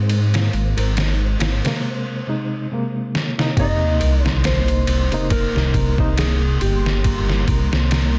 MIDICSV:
0, 0, Header, 1, 9, 480
1, 0, Start_track
1, 0, Key_signature, -3, "minor"
1, 0, Tempo, 869565
1, 50, Time_signature, 4, 2, 24, 8
1, 4520, End_track
2, 0, Start_track
2, 0, Title_t, "Synth texture"
2, 0, Program_c, 0, 99
2, 0, Note_on_c, 0, 72, 80
2, 1012, Note_off_c, 0, 72, 0
2, 1969, Note_on_c, 0, 84, 76
2, 4520, Note_off_c, 0, 84, 0
2, 4520, End_track
3, 0, Start_track
3, 0, Title_t, "Clean electric guitar"
3, 0, Program_c, 1, 27
3, 1985, Note_on_c, 1, 75, 96
3, 2332, Note_off_c, 1, 75, 0
3, 2332, Note_on_c, 1, 73, 96
3, 2458, Note_off_c, 1, 73, 0
3, 2460, Note_on_c, 1, 72, 97
3, 2913, Note_off_c, 1, 72, 0
3, 2935, Note_on_c, 1, 70, 102
3, 3413, Note_off_c, 1, 70, 0
3, 3415, Note_on_c, 1, 68, 89
3, 3636, Note_off_c, 1, 68, 0
3, 3653, Note_on_c, 1, 67, 77
3, 4109, Note_off_c, 1, 67, 0
3, 4520, End_track
4, 0, Start_track
4, 0, Title_t, "String machine"
4, 0, Program_c, 2, 50
4, 0, Note_on_c, 2, 56, 76
4, 0, Note_on_c, 2, 60, 70
4, 0, Note_on_c, 2, 70, 73
4, 0, Note_on_c, 2, 75, 83
4, 987, Note_off_c, 2, 56, 0
4, 989, Note_off_c, 2, 70, 0
4, 990, Note_off_c, 2, 60, 0
4, 990, Note_off_c, 2, 75, 0
4, 1964, Note_on_c, 2, 58, 76
4, 1965, Note_on_c, 2, 75, 88
4, 1967, Note_on_c, 2, 70, 72
4, 1968, Note_on_c, 2, 63, 71
4, 4520, Note_off_c, 2, 58, 0
4, 4520, Note_off_c, 2, 63, 0
4, 4520, Note_off_c, 2, 70, 0
4, 4520, Note_off_c, 2, 75, 0
4, 4520, End_track
5, 0, Start_track
5, 0, Title_t, "Nylon-string guitar"
5, 0, Program_c, 3, 24
5, 183, Note_on_c, 3, 58, 66
5, 410, Note_off_c, 3, 58, 0
5, 424, Note_on_c, 3, 70, 73
5, 520, Note_off_c, 3, 70, 0
5, 532, Note_on_c, 3, 63, 85
5, 658, Note_off_c, 3, 63, 0
5, 769, Note_on_c, 3, 58, 94
5, 896, Note_off_c, 3, 58, 0
5, 1969, Note_on_c, 3, 58, 79
5, 2199, Note_off_c, 3, 58, 0
5, 2207, Note_on_c, 3, 70, 76
5, 2329, Note_off_c, 3, 70, 0
5, 2342, Note_on_c, 3, 72, 75
5, 2438, Note_off_c, 3, 72, 0
5, 2448, Note_on_c, 3, 58, 85
5, 2576, Note_off_c, 3, 58, 0
5, 2930, Note_on_c, 3, 58, 83
5, 3159, Note_off_c, 3, 58, 0
5, 3171, Note_on_c, 3, 70, 72
5, 3290, Note_off_c, 3, 70, 0
5, 3303, Note_on_c, 3, 72, 77
5, 3399, Note_off_c, 3, 72, 0
5, 3409, Note_on_c, 3, 58, 82
5, 3536, Note_off_c, 3, 58, 0
5, 3891, Note_on_c, 3, 58, 84
5, 4120, Note_off_c, 3, 58, 0
5, 4132, Note_on_c, 3, 70, 71
5, 4251, Note_off_c, 3, 70, 0
5, 4265, Note_on_c, 3, 72, 79
5, 4360, Note_off_c, 3, 72, 0
5, 4371, Note_on_c, 3, 58, 87
5, 4497, Note_off_c, 3, 58, 0
5, 4520, End_track
6, 0, Start_track
6, 0, Title_t, "Reed electric piano"
6, 0, Program_c, 4, 4
6, 906, Note_on_c, 4, 48, 95
6, 912, Note_on_c, 4, 56, 83
6, 921, Note_on_c, 4, 58, 102
6, 1226, Note_off_c, 4, 48, 0
6, 1228, Note_off_c, 4, 56, 0
6, 1233, Note_off_c, 4, 58, 0
6, 1254, Note_on_c, 4, 48, 73
6, 1259, Note_on_c, 4, 56, 73
6, 1266, Note_on_c, 4, 63, 86
6, 1466, Note_off_c, 4, 48, 0
6, 1469, Note_off_c, 4, 56, 0
6, 1472, Note_off_c, 4, 63, 0
6, 1496, Note_on_c, 4, 48, 73
6, 1502, Note_on_c, 4, 56, 69
6, 1509, Note_on_c, 4, 58, 86
6, 1834, Note_off_c, 4, 48, 0
6, 1837, Note_off_c, 4, 56, 0
6, 1841, Note_off_c, 4, 58, 0
6, 1867, Note_on_c, 4, 48, 91
6, 1872, Note_on_c, 4, 58, 80
6, 1878, Note_on_c, 4, 63, 102
6, 1961, Note_off_c, 4, 48, 0
6, 1967, Note_on_c, 4, 48, 100
6, 1974, Note_off_c, 4, 58, 0
6, 1980, Note_on_c, 4, 58, 91
6, 1987, Note_off_c, 4, 63, 0
6, 1993, Note_on_c, 4, 63, 112
6, 2689, Note_off_c, 4, 48, 0
6, 2695, Note_off_c, 4, 58, 0
6, 2701, Note_off_c, 4, 63, 0
6, 2825, Note_on_c, 4, 48, 89
6, 2832, Note_on_c, 4, 58, 86
6, 2837, Note_on_c, 4, 63, 107
6, 3032, Note_off_c, 4, 48, 0
6, 3036, Note_off_c, 4, 58, 0
6, 3038, Note_off_c, 4, 63, 0
6, 3062, Note_on_c, 4, 48, 88
6, 3069, Note_on_c, 4, 58, 80
6, 3075, Note_on_c, 4, 63, 90
6, 3271, Note_off_c, 4, 48, 0
6, 3274, Note_off_c, 4, 58, 0
6, 3277, Note_off_c, 4, 63, 0
6, 3299, Note_on_c, 4, 48, 99
6, 3306, Note_on_c, 4, 58, 85
6, 3313, Note_on_c, 4, 63, 113
6, 3510, Note_off_c, 4, 48, 0
6, 3513, Note_off_c, 4, 58, 0
6, 3517, Note_off_c, 4, 63, 0
6, 4520, End_track
7, 0, Start_track
7, 0, Title_t, "Detuned saw bass"
7, 0, Program_c, 5, 39
7, 0, Note_on_c, 5, 44, 101
7, 272, Note_off_c, 5, 44, 0
7, 295, Note_on_c, 5, 32, 91
7, 410, Note_off_c, 5, 32, 0
7, 427, Note_on_c, 5, 32, 103
7, 751, Note_off_c, 5, 32, 0
7, 772, Note_on_c, 5, 32, 94
7, 888, Note_off_c, 5, 32, 0
7, 2214, Note_on_c, 5, 36, 93
7, 2329, Note_off_c, 5, 36, 0
7, 2345, Note_on_c, 5, 36, 104
7, 2670, Note_off_c, 5, 36, 0
7, 2690, Note_on_c, 5, 36, 95
7, 2807, Note_off_c, 5, 36, 0
7, 3066, Note_on_c, 5, 36, 94
7, 3158, Note_off_c, 5, 36, 0
7, 3171, Note_on_c, 5, 36, 94
7, 3630, Note_off_c, 5, 36, 0
7, 3653, Note_on_c, 5, 31, 100
7, 4111, Note_off_c, 5, 31, 0
7, 4130, Note_on_c, 5, 36, 87
7, 4247, Note_off_c, 5, 36, 0
7, 4267, Note_on_c, 5, 36, 110
7, 4520, Note_off_c, 5, 36, 0
7, 4520, End_track
8, 0, Start_track
8, 0, Title_t, "Sub drop"
8, 0, Program_c, 6, 103
8, 1969, Note_on_c, 6, 60, 73
8, 3889, Note_off_c, 6, 60, 0
8, 4520, End_track
9, 0, Start_track
9, 0, Title_t, "Drums"
9, 52, Note_on_c, 9, 51, 59
9, 107, Note_off_c, 9, 51, 0
9, 187, Note_on_c, 9, 51, 70
9, 193, Note_on_c, 9, 38, 100
9, 242, Note_off_c, 9, 51, 0
9, 248, Note_off_c, 9, 38, 0
9, 294, Note_on_c, 9, 51, 36
9, 349, Note_off_c, 9, 51, 0
9, 428, Note_on_c, 9, 51, 64
9, 483, Note_off_c, 9, 51, 0
9, 535, Note_on_c, 9, 51, 78
9, 541, Note_on_c, 9, 38, 108
9, 590, Note_off_c, 9, 51, 0
9, 596, Note_off_c, 9, 38, 0
9, 775, Note_on_c, 9, 51, 81
9, 780, Note_on_c, 9, 38, 112
9, 830, Note_off_c, 9, 51, 0
9, 835, Note_off_c, 9, 38, 0
9, 910, Note_on_c, 9, 51, 76
9, 915, Note_on_c, 9, 38, 96
9, 965, Note_off_c, 9, 51, 0
9, 970, Note_off_c, 9, 38, 0
9, 1739, Note_on_c, 9, 38, 57
9, 1794, Note_off_c, 9, 38, 0
9, 1872, Note_on_c, 9, 38, 66
9, 1927, Note_off_c, 9, 38, 0
9, 1970, Note_on_c, 9, 36, 104
9, 1971, Note_on_c, 9, 51, 83
9, 2026, Note_off_c, 9, 36, 0
9, 2026, Note_off_c, 9, 51, 0
9, 2212, Note_on_c, 9, 51, 67
9, 2268, Note_off_c, 9, 51, 0
9, 2350, Note_on_c, 9, 38, 52
9, 2405, Note_off_c, 9, 38, 0
9, 2451, Note_on_c, 9, 51, 80
9, 2456, Note_on_c, 9, 38, 114
9, 2506, Note_off_c, 9, 51, 0
9, 2512, Note_off_c, 9, 38, 0
9, 2584, Note_on_c, 9, 51, 44
9, 2640, Note_off_c, 9, 51, 0
9, 2690, Note_on_c, 9, 51, 74
9, 2745, Note_off_c, 9, 51, 0
9, 2826, Note_on_c, 9, 51, 44
9, 2881, Note_off_c, 9, 51, 0
9, 2928, Note_on_c, 9, 36, 109
9, 2928, Note_on_c, 9, 51, 89
9, 2983, Note_off_c, 9, 51, 0
9, 2984, Note_off_c, 9, 36, 0
9, 3069, Note_on_c, 9, 38, 39
9, 3125, Note_off_c, 9, 38, 0
9, 3169, Note_on_c, 9, 36, 94
9, 3170, Note_on_c, 9, 51, 69
9, 3224, Note_off_c, 9, 36, 0
9, 3226, Note_off_c, 9, 51, 0
9, 3302, Note_on_c, 9, 36, 97
9, 3358, Note_off_c, 9, 36, 0
9, 3409, Note_on_c, 9, 51, 93
9, 3414, Note_on_c, 9, 38, 111
9, 3464, Note_off_c, 9, 51, 0
9, 3469, Note_off_c, 9, 38, 0
9, 3649, Note_on_c, 9, 51, 64
9, 3704, Note_off_c, 9, 51, 0
9, 3788, Note_on_c, 9, 38, 55
9, 3844, Note_off_c, 9, 38, 0
9, 3888, Note_on_c, 9, 51, 85
9, 3889, Note_on_c, 9, 36, 108
9, 3943, Note_off_c, 9, 51, 0
9, 3944, Note_off_c, 9, 36, 0
9, 4027, Note_on_c, 9, 38, 47
9, 4082, Note_off_c, 9, 38, 0
9, 4127, Note_on_c, 9, 51, 65
9, 4128, Note_on_c, 9, 36, 89
9, 4182, Note_off_c, 9, 51, 0
9, 4183, Note_off_c, 9, 36, 0
9, 4266, Note_on_c, 9, 38, 62
9, 4321, Note_off_c, 9, 38, 0
9, 4366, Note_on_c, 9, 51, 83
9, 4371, Note_on_c, 9, 38, 118
9, 4421, Note_off_c, 9, 51, 0
9, 4427, Note_off_c, 9, 38, 0
9, 4520, End_track
0, 0, End_of_file